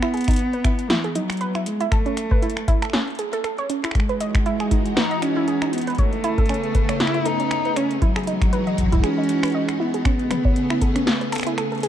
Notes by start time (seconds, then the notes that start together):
Already playing: B3
0.02 E4, finger snap
0.14 G#4, closed hi-hat
0.17 closed hi-hat
0.21 closed hi-hat
0.24 finger snap, closed hi-hat
0.28 D#4, kick, closed hi-hat
0.31 closed hi-hat
0.33 closed hi-hat
0.36 closed hi-hat
0.39 closed hi-hat
0.53 B4, closed hi-hat
0.64 E4, finger snap, kick, closed hi-hat
0.79 closed hi-hat
0.90 E3 E4, finger snap, snare, closed hi-hat
1.04 G#4, closed hi-hat
1.15 F#3 D#4, closed hi-hat
1.30 finger snap, closed hi-hat
1.32 closed hi-hat
1.37 B4, closed hi-hat
1.41 closed hi-hat
1.55 E4, finger snap, closed hi-hat
1.66 G#3, closed hi-hat
1.80 E4, closed hi-hat
1.92 A3 A4, finger snap, kick, closed hi-hat
2.06 C#4, closed hi-hat
2.17 finger snap, closed hi-hat
2.31 B4, kick
2.42 E4, closed hi-hat
2.50 closed hi-hat
2.57 finger snap, closed hi-hat
2.68 E4, kick, closed hi-hat
2.82 A4, finger snap, closed hi-hat
2.85 finger snap
2.90 C#4, finger snap
2.93 finger snap, snare, closed hi-hat
2.98 finger snap
3.02 finger snap
3.08 closed hi-hat
3.10 closed hi-hat
3.15 closed hi-hat
3.19 G#4, closed hi-hat
3.33 A4, closed hi-hat
3.44 A4, finger snap, closed hi-hat
3.58 C#5, closed hi-hat
3.70 C#4, closed hi-hat
3.84 E4, finger snap, closed hi-hat
3.91 E3 G#3 D#4 F#4, finger snap, kick
3.95 finger snap, closed hi-hat
4.00 finger snap
4.09 B4, closed hi-hat
4.20 D#5, closed hi-hat
4.35 finger snap, kick, closed hi-hat
4.46 E4, closed hi-hat
4.60 G#4, finger snap, closed hi-hat
4.71 D#4, kick, closed hi-hat
4.86 closed hi-hat
4.97 D#4 B4, finger snap, snare, closed hi-hat
5.11 D#5, closed hi-hat
5.22 C#4, finger snap, closed hi-hat
5.36 E4
5.48 G#4, closed hi-hat
5.62 D#4, finger snap, closed hi-hat
5.73 B3, closed hi-hat
5.78 closed hi-hat
5.81 closed hi-hat
5.87 B4, closed hi-hat
5.90 closed hi-hat
5.95 A3, kick, closed hi-hat
5.98 C#3 A3 B3 G#4 C#5, closed hi-hat
6.13 closed hi-hat
6.24 E4, closed hi-hat
6.38 A4, kick, closed hi-hat
6.46 finger snap, closed hi-hat
6.49 C#4, closed hi-hat
6.54 closed hi-hat
6.64 closed hi-hat
6.75 B4, kick, closed hi-hat
6.89 C#5, finger snap, closed hi-hat
7.00 E4, snare, closed hi-hat
7.07 finger snap
7.14 E4, closed hi-hat
7.26 D#4 A4, closed hi-hat
7.40 C#4, closed hi-hat
7.51 finger snap, closed hi-hat
7.65 B4, closed hi-hat
7.76 C#4 C#5, finger snap, closed hi-hat
7.91 closed hi-hat
8.02 E3 F#3 G#3 D#4 E4 F#4, kick, closed hi-hat
8.16 G#4, finger snap, closed hi-hat
8.19 closed hi-hat
8.23 closed hi-hat
8.27 D#4, closed hi-hat
8.41 finger snap, kick, closed hi-hat
8.53 B4, closed hi-hat
8.67 D#5, closed hi-hat
8.78 kick, closed hi-hat
8.83 kick
8.87 kick
8.92 E4, kick, closed hi-hat
8.95 kick
9.00 C#4 G#4, finger snap, kick, closed hi-hat
9.18 D#4
9.24 closed hi-hat
9.29 closed hi-hat
9.43 B4, finger snap, closed hi-hat
9.45 closed hi-hat
9.50 closed hi-hat
9.52 D#5, closed hi-hat
9.69 finger snap, closed hi-hat
9.80 B3 E4
9.94 G#4, closed hi-hat
10.05 C#3 A3 B3 C#4 G#4, finger snap, kick, closed hi-hat
10.19 closed hi-hat
10.31 B4, finger snap, closed hi-hat, high tom
10.45 C#5, kick
10.56 closed hi-hat
10.70 E4, finger snap
10.81 A4, kick, closed hi-hat
10.96 C#4, finger snap, closed hi-hat
11.07 snare, closed hi-hat
11.21 B4, closed hi-hat
11.32 A4, finger snap, closed hi-hat
11.35 finger snap, closed hi-hat
11.38 finger snap, closed hi-hat
11.41 finger snap, closed hi-hat
11.44 closed hi-hat
11.47 E4, closed hi-hat
11.58 A4, finger snap, closed hi-hat
11.72 A4, closed hi-hat
11.75 closed hi-hat
11.78 closed hi-hat
11.80 closed hi-hat
11.83 G#4, closed hi-hat